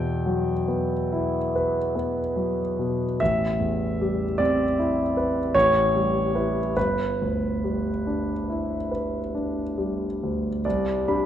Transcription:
Already playing: E2 B2 G5
0.26 F#3
0.68 B3
1.12 E4
1.56 B4
1.95 B3
2.36 F#3
2.79 B2
3.20 A1 E5
3.60 E2
4.01 G3
4.38 C4 D5
4.79 E4
5.17 B4
5.54 A1 C#5
5.96 G3
6.35 E4 B4
6.77 G1 B4
7.21 D2
7.64 G3
8.07 D4
8.50 E4
8.91 B4
9.35 D4
9.78 G3
10.23 D2
10.65 C2 D5
11.08 G3 D4 B5

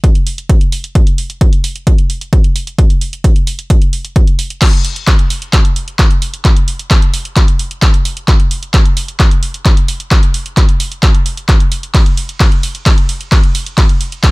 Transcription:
0.04 kick, closed hi-hat
0.15 closed hi-hat
0.27 open hi-hat
0.38 closed hi-hat
0.49 kick, closed hi-hat
0.61 closed hi-hat
0.72 open hi-hat
0.84 closed hi-hat
0.95 kick, closed hi-hat
1.07 closed hi-hat
1.18 open hi-hat
1.30 closed hi-hat
1.41 kick, closed hi-hat
1.53 closed hi-hat
1.64 open hi-hat
1.76 closed hi-hat
1.87 kick, closed hi-hat
1.98 closed hi-hat
2.10 open hi-hat
2.21 closed hi-hat
2.33 kick, closed hi-hat
2.44 closed hi-hat
2.56 open hi-hat
2.67 closed hi-hat
2.78 kick, closed hi-hat
2.90 closed hi-hat
3.01 open hi-hat
3.13 closed hi-hat
3.24 kick, closed hi-hat
3.36 closed hi-hat
3.47 open hi-hat
3.59 closed hi-hat
3.70 kick, closed hi-hat
3.82 closed hi-hat
3.93 open hi-hat
4.05 closed hi-hat
4.16 kick, closed hi-hat
4.27 closed hi-hat
4.39 open hi-hat
4.50 closed hi-hat
4.62 kick, clap, closed hi-hat, crash
4.73 closed hi-hat
4.85 open hi-hat
4.96 closed hi-hat
5.07 kick, clap, closed hi-hat
5.19 closed hi-hat
5.30 open hi-hat
5.42 closed hi-hat
5.53 kick, clap, closed hi-hat
5.65 closed hi-hat
5.76 open hi-hat
5.88 closed hi-hat
5.99 kick, clap, closed hi-hat
6.11 closed hi-hat
6.22 open hi-hat
6.34 closed hi-hat
6.45 kick, clap, closed hi-hat
6.56 closed hi-hat
6.68 open hi-hat
6.79 closed hi-hat
6.91 kick, clap, closed hi-hat
7.02 closed hi-hat
7.14 open hi-hat
7.25 closed hi-hat
7.36 kick, clap, closed hi-hat
7.48 closed hi-hat
7.59 open hi-hat
7.71 closed hi-hat
7.82 kick, clap, closed hi-hat
7.94 closed hi-hat
8.05 open hi-hat
8.17 closed hi-hat
8.28 kick, clap, closed hi-hat
8.40 closed hi-hat
8.51 open hi-hat
8.63 closed hi-hat
8.74 kick, clap, closed hi-hat
8.85 closed hi-hat
8.97 open hi-hat
9.08 closed hi-hat
9.20 kick, clap, closed hi-hat
9.31 closed hi-hat
9.43 open hi-hat
9.54 closed hi-hat
9.66 kick, clap, closed hi-hat
9.77 closed hi-hat
9.88 open hi-hat
10.00 closed hi-hat
10.11 kick, clap, closed hi-hat
10.23 closed hi-hat
10.34 open hi-hat
10.46 closed hi-hat
10.57 kick, clap, closed hi-hat
10.69 closed hi-hat
10.80 open hi-hat
10.92 closed hi-hat
11.03 kick, clap, closed hi-hat
11.15 closed hi-hat
11.26 open hi-hat
11.37 closed hi-hat
11.49 kick, clap, closed hi-hat
11.60 closed hi-hat
11.72 open hi-hat
11.83 closed hi-hat
11.95 kick, clap, closed hi-hat, ride
12.06 closed hi-hat
12.17 open hi-hat
12.29 closed hi-hat
12.40 kick, clap, closed hi-hat, ride
12.52 closed hi-hat
12.63 open hi-hat
12.75 closed hi-hat
12.86 kick, clap, closed hi-hat, ride
12.98 closed hi-hat
13.09 open hi-hat
13.21 closed hi-hat
13.32 kick, clap, closed hi-hat, ride
13.44 closed hi-hat
13.55 open hi-hat
13.66 closed hi-hat
13.78 kick, clap, closed hi-hat, ride
13.89 closed hi-hat
14.01 open hi-hat
14.12 closed hi-hat
14.24 kick, clap, closed hi-hat, ride

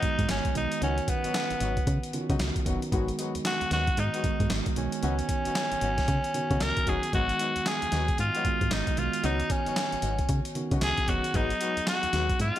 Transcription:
Already playing: D#3 G#3 B3 D#4 F#4
0.02 G#2 D#3 G#3 B3 F#4, kick, closed hi-hat
0.19 G#2, kick, closed hi-hat
0.29 G#1 C#4, snare, clap, closed hi-hat
0.45 kick, closed hi-hat
0.55 B1 D#3 G#3 B3 D#4 F#4, closed hi-hat
0.72 closed hi-hat
0.81 C#2 D#3 F#3 B3 C#4 D#4 F4 F#4, closed hi-hat
0.89 F#4
0.98 closed hi-hat
1.08 B3, kick, closed hi-hat
1.24 G#1 F#3 B3 C#4 D#4 F#4, closed hi-hat
1.34 snare, clap, closed hi-hat
1.50 G#1, closed hi-hat
1.60 G#1 F#3 B3 C#4 D#4 F#4, closed hi-hat
1.77 kick, closed hi-hat
1.87 C#3, kick, closed hi-hat
2.03 closed hi-hat
2.13 C#3 D#3 B3 C#4 F4, closed hi-hat
2.21 F#4
2.29 C#3 F#3 B3 C#4 D#4 F#4, kick, closed hi-hat
2.39 C#2, snare, clap, closed hi-hat
2.56 kick, closed hi-hat
2.66 F#1 D#3 F#3 B3 C#4 D#4 F#4, kick, closed hi-hat
2.82 closed hi-hat
2.92 G#1 D#3 F#3 G#3 B3 D#4 F#4, kick, closed hi-hat
3.08 closed hi-hat
3.18 F#3 G#3 B3 D#4 F#4, closed hi-hat
3.35 D#2, closed hi-hat
3.45 F#4, snare, clap, closed hi-hat
3.61 D#2, closed hi-hat
3.71 D#2 F#3 G#3 B3 D#4 F#4, snare, closed hi-hat
3.87 kick, closed hi-hat
3.97 G#2 D#4, closed hi-hat
4.13 F#3 G#3 B3 D#4 F#4, closed hi-hat
4.24 G#2 D#3 G#3 B3 F#4, kick, closed hi-hat
4.40 G#2, kick, closed hi-hat
4.50 G#1, snare, clap, closed hi-hat
4.66 kick, closed hi-hat
4.76 B1 D#3 G#3 B3 C#4 F#4, closed hi-hat
4.92 closed hi-hat
5.02 C#2 D#3 F#3 B3 C#4 D#4 F#4, closed hi-hat
5.19 closed hi-hat
5.29 kick, closed hi-hat
5.45 G#1 F#3 B3 C#4 D#4 F#4, closed hi-hat
5.55 snare, clap, closed hi-hat
5.72 G#1, closed hi-hat
5.81 G#1 F#3 B3 C#4 D#4 F#4, closed hi-hat
5.98 kick, snare, closed hi-hat
6.08 C#3, kick, closed hi-hat
6.24 closed hi-hat
6.34 C#3 D#3 B3 C#4 F#4, closed hi-hat
6.50 C#3 F#3 B3 C#4 D#4 F#4, kick, closed hi-hat
6.60 C#2 A#4, snare, clap, closed hi-hat
6.77 kick, closed hi-hat
6.87 F#1 D#3 F#3 B3 C#4 D#4 F#4 G#4, kick, closed hi-hat
7.03 closed hi-hat
7.13 G#1 D#3 F#3 G#3 B3 D#4 F#4, kick, closed hi-hat
7.29 closed hi-hat
7.39 F#3 G#3 B3 D#4 F#4, closed hi-hat
7.56 D#2, closed hi-hat
7.66 G#4, snare, clap, closed hi-hat
7.82 D#2, closed hi-hat
7.92 D#2 F#3 G#3 B3 D#4 F#4, snare, closed hi-hat
8.08 kick, closed hi-hat
8.18 G#2 F4, closed hi-hat
8.34 F#3 G#3 B3 D#4 F#4, closed hi-hat
8.45 G#2 D#3 G#3 B3 F#4, kick, closed hi-hat
8.61 G#2, kick, closed hi-hat
8.71 G#1 D#4, snare, clap, closed hi-hat
8.87 kick, closed hi-hat
8.97 B1 D#3 G#3 B3 F4 F#4, closed hi-hat
9.13 closed hi-hat
9.23 C#2 D#3 F#3 B3 C#4 D#4 F#4, closed hi-hat
9.40 closed hi-hat
9.50 C#4, kick, closed hi-hat
9.66 G#1 F#3 B3 C#4 D#4 F#4, closed hi-hat
9.76 snare, clap, closed hi-hat
9.92 G#1, closed hi-hat
10.02 G#1 F#3 B3 C#4 D#4 F#4, closed hi-hat
10.19 kick, closed hi-hat
10.29 C#3, kick, closed hi-hat
10.45 closed hi-hat
10.55 C#3 D#3 B3 C#4 F#4, closed hi-hat
10.71 C#3 F#3 B3 C#4 D#4 F#4, kick, closed hi-hat
10.81 C#2 G#4, snare, clap, closed hi-hat
10.97 kick, closed hi-hat
11.08 F#1 D#3 F#3 B3 C#4 D#4 F#4 G#4, kick, closed hi-hat
11.24 closed hi-hat
11.34 G#1 F#3 G#3 B3 D#4 F#4 G#4, kick, closed hi-hat
11.50 closed hi-hat
11.60 F#3 G#3 B3 D#4 F#4, closed hi-hat
11.77 D#2, closed hi-hat
11.87 F#4, snare, clap, closed hi-hat
12.03 D#2, closed hi-hat
12.13 D#2 F#3 G#3 B3 D#4 F#4, snare, closed hi-hat
12.30 kick, closed hi-hat
12.40 G#2 F4, closed hi-hat
12.55 F#3 G#3 B3 D#4 F#4, closed hi-hat

